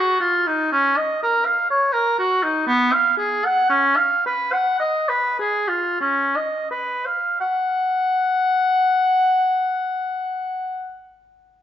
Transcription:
0, 0, Header, 1, 2, 480
1, 0, Start_track
1, 0, Tempo, 975610
1, 358, Time_signature, 3, 2, 24, 8
1, 1318, Tempo, 1030928
1, 1798, Tempo, 1098901
1, 2278, Tempo, 1212121
1, 2758, Tempo, 1395349
1, 3718, Tempo, 1360544
1, 4711, End_track
2, 0, Start_track
2, 0, Title_t, "Oboe"
2, 0, Program_c, 0, 68
2, 0, Note_on_c, 0, 66, 55
2, 96, Note_off_c, 0, 66, 0
2, 99, Note_on_c, 0, 65, 50
2, 230, Note_on_c, 0, 63, 55
2, 238, Note_off_c, 0, 65, 0
2, 351, Note_off_c, 0, 63, 0
2, 354, Note_on_c, 0, 61, 73
2, 476, Note_on_c, 0, 75, 60
2, 484, Note_off_c, 0, 61, 0
2, 599, Note_off_c, 0, 75, 0
2, 604, Note_on_c, 0, 70, 55
2, 715, Note_on_c, 0, 77, 57
2, 722, Note_off_c, 0, 70, 0
2, 835, Note_off_c, 0, 77, 0
2, 838, Note_on_c, 0, 73, 62
2, 950, Note_on_c, 0, 70, 54
2, 957, Note_off_c, 0, 73, 0
2, 1071, Note_off_c, 0, 70, 0
2, 1074, Note_on_c, 0, 66, 53
2, 1195, Note_on_c, 0, 63, 52
2, 1203, Note_off_c, 0, 66, 0
2, 1310, Note_off_c, 0, 63, 0
2, 1313, Note_on_c, 0, 59, 73
2, 1433, Note_on_c, 0, 77, 59
2, 1440, Note_off_c, 0, 59, 0
2, 1545, Note_off_c, 0, 77, 0
2, 1548, Note_on_c, 0, 68, 49
2, 1678, Note_on_c, 0, 78, 56
2, 1685, Note_off_c, 0, 68, 0
2, 1788, Note_off_c, 0, 78, 0
2, 1791, Note_on_c, 0, 61, 66
2, 1911, Note_on_c, 0, 77, 58
2, 1917, Note_off_c, 0, 61, 0
2, 2031, Note_off_c, 0, 77, 0
2, 2038, Note_on_c, 0, 71, 48
2, 2154, Note_on_c, 0, 78, 54
2, 2160, Note_off_c, 0, 71, 0
2, 2269, Note_off_c, 0, 78, 0
2, 2272, Note_on_c, 0, 75, 58
2, 2388, Note_on_c, 0, 71, 48
2, 2394, Note_off_c, 0, 75, 0
2, 2507, Note_off_c, 0, 71, 0
2, 2509, Note_on_c, 0, 68, 47
2, 2625, Note_on_c, 0, 65, 48
2, 2630, Note_off_c, 0, 68, 0
2, 2750, Note_off_c, 0, 65, 0
2, 2752, Note_on_c, 0, 61, 60
2, 2875, Note_on_c, 0, 75, 47
2, 2881, Note_off_c, 0, 61, 0
2, 2993, Note_off_c, 0, 75, 0
2, 2995, Note_on_c, 0, 71, 41
2, 3115, Note_on_c, 0, 77, 47
2, 3120, Note_off_c, 0, 71, 0
2, 3232, Note_off_c, 0, 77, 0
2, 3234, Note_on_c, 0, 78, 68
2, 4487, Note_off_c, 0, 78, 0
2, 4711, End_track
0, 0, End_of_file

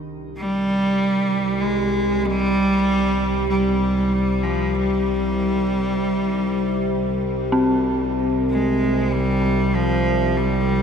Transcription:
0, 0, Header, 1, 5, 480
1, 0, Start_track
1, 0, Key_signature, -3, "minor"
1, 0, Tempo, 1250000
1, 1815, Time_signature, 4, 2, 24, 8
1, 4156, End_track
2, 0, Start_track
2, 0, Title_t, "Synth bell"
2, 0, Program_c, 0, 98
2, 0, Control_c, 0, 64, 127
2, 0, Note_on_c, 0, 62, 47
2, 1222, Note_off_c, 0, 62, 0
2, 2889, Note_on_c, 0, 60, 50
2, 4156, Note_off_c, 0, 60, 0
2, 4156, End_track
3, 0, Start_track
3, 0, Title_t, "Analog synth pad"
3, 0, Program_c, 1, 89
3, 0, Note_on_c, 1, 51, 65
3, 8, Note_on_c, 1, 55, 79
3, 831, Note_on_c, 1, 67, 68
3, 1190, Note_on_c, 1, 60, 67
3, 4156, Note_off_c, 1, 51, 0
3, 4156, Note_off_c, 1, 55, 0
3, 4156, Note_off_c, 1, 60, 0
3, 4156, Note_off_c, 1, 67, 0
3, 4156, End_track
4, 0, Start_track
4, 0, Title_t, "Cello"
4, 0, Program_c, 2, 42
4, 142, Note_on_c, 2, 55, 99
4, 616, Note_on_c, 2, 56, 92
4, 622, Note_off_c, 2, 55, 0
4, 864, Note_on_c, 2, 55, 116
4, 869, Note_off_c, 2, 56, 0
4, 1338, Note_off_c, 2, 55, 0
4, 1341, Note_on_c, 2, 55, 81
4, 1700, Note_on_c, 2, 53, 75
4, 1706, Note_off_c, 2, 55, 0
4, 1822, Note_on_c, 2, 55, 89
4, 1828, Note_off_c, 2, 53, 0
4, 2778, Note_off_c, 2, 55, 0
4, 3267, Note_on_c, 2, 56, 73
4, 3503, Note_on_c, 2, 55, 84
4, 3509, Note_off_c, 2, 56, 0
4, 3745, Note_on_c, 2, 53, 87
4, 3751, Note_off_c, 2, 55, 0
4, 3983, Note_on_c, 2, 55, 88
4, 3988, Note_off_c, 2, 53, 0
4, 4156, Note_off_c, 2, 55, 0
4, 4156, End_track
5, 0, Start_track
5, 0, Title_t, "Synth drone"
5, 0, Program_c, 3, 95
5, 0, Note_on_c, 3, 36, 67
5, 0, Note_on_c, 3, 48, 69
5, 4156, Note_off_c, 3, 36, 0
5, 4156, Note_off_c, 3, 48, 0
5, 4156, End_track
0, 0, End_of_file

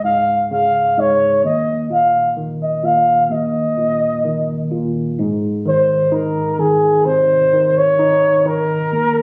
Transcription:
0, 0, Header, 1, 3, 480
1, 0, Start_track
1, 0, Key_signature, -4, "major"
1, 0, Tempo, 934579
1, 738, Time_signature, 4, 2, 24, 8
1, 4736, End_track
2, 0, Start_track
2, 0, Title_t, "Flugelhorn"
2, 0, Program_c, 0, 56
2, 24, Note_on_c, 0, 77, 88
2, 245, Note_off_c, 0, 77, 0
2, 272, Note_on_c, 0, 77, 92
2, 512, Note_on_c, 0, 73, 85
2, 520, Note_off_c, 0, 77, 0
2, 743, Note_off_c, 0, 73, 0
2, 746, Note_on_c, 0, 75, 86
2, 965, Note_off_c, 0, 75, 0
2, 989, Note_on_c, 0, 77, 89
2, 1189, Note_off_c, 0, 77, 0
2, 1349, Note_on_c, 0, 75, 77
2, 1465, Note_on_c, 0, 77, 89
2, 1473, Note_off_c, 0, 75, 0
2, 1702, Note_on_c, 0, 75, 88
2, 1710, Note_off_c, 0, 77, 0
2, 2426, Note_off_c, 0, 75, 0
2, 2920, Note_on_c, 0, 72, 82
2, 3155, Note_on_c, 0, 70, 76
2, 3163, Note_off_c, 0, 72, 0
2, 3389, Note_on_c, 0, 68, 80
2, 3397, Note_off_c, 0, 70, 0
2, 3624, Note_on_c, 0, 72, 92
2, 3632, Note_off_c, 0, 68, 0
2, 3993, Note_on_c, 0, 73, 96
2, 4001, Note_off_c, 0, 72, 0
2, 4350, Note_on_c, 0, 70, 96
2, 4358, Note_off_c, 0, 73, 0
2, 4736, Note_off_c, 0, 70, 0
2, 4736, End_track
3, 0, Start_track
3, 0, Title_t, "Tine electric piano"
3, 0, Program_c, 1, 4
3, 0, Control_c, 1, 64, 127
3, 0, Note_on_c, 1, 37, 58
3, 22, Note_on_c, 1, 44, 48
3, 263, Note_on_c, 1, 49, 51
3, 495, Note_off_c, 1, 44, 0
3, 501, Note_on_c, 1, 44, 52
3, 720, Note_off_c, 1, 37, 0
3, 725, Note_off_c, 1, 49, 0
3, 732, Note_off_c, 1, 44, 0
3, 740, Note_on_c, 1, 39, 62
3, 745, Control_c, 1, 64, 0
3, 827, Control_c, 1, 64, 127
3, 975, Note_on_c, 1, 46, 45
3, 1216, Note_on_c, 1, 51, 47
3, 1450, Note_off_c, 1, 46, 0
3, 1456, Note_on_c, 1, 46, 49
3, 1678, Note_off_c, 1, 39, 0
3, 1683, Note_off_c, 1, 51, 0
3, 1690, Note_off_c, 1, 46, 0
3, 1695, Note_on_c, 1, 39, 58
3, 1705, Control_c, 1, 64, 0
3, 1787, Control_c, 1, 64, 127
3, 1937, Note_on_c, 1, 46, 45
3, 2181, Note_on_c, 1, 51, 50
3, 2413, Note_off_c, 1, 46, 0
3, 2419, Note_on_c, 1, 46, 48
3, 2643, Note_off_c, 1, 39, 0
3, 2650, Note_off_c, 1, 51, 0
3, 2656, Note_off_c, 1, 46, 0
3, 2665, Note_on_c, 1, 44, 64
3, 2672, Control_c, 1, 64, 0
3, 2767, Control_c, 1, 64, 127
3, 2904, Note_on_c, 1, 51, 48
3, 3143, Note_on_c, 1, 63, 51
3, 3379, Note_off_c, 1, 51, 0
3, 3386, Note_on_c, 1, 51, 48
3, 3624, Note_on_c, 1, 48, 51
3, 3861, Note_off_c, 1, 51, 0
3, 3868, Note_on_c, 1, 51, 44
3, 4084, Note_off_c, 1, 63, 0
3, 4104, Note_on_c, 1, 63, 56
3, 4338, Note_off_c, 1, 51, 0
3, 4344, Note_on_c, 1, 51, 46
3, 4562, Note_off_c, 1, 48, 0
3, 4563, Note_off_c, 1, 44, 0
3, 4569, Note_off_c, 1, 63, 0
3, 4576, Note_off_c, 1, 51, 0
3, 4582, Note_on_c, 1, 39, 60
3, 4590, Control_c, 1, 64, 0
3, 4680, Control_c, 1, 64, 127
3, 4736, Note_off_c, 1, 39, 0
3, 4736, End_track
0, 0, End_of_file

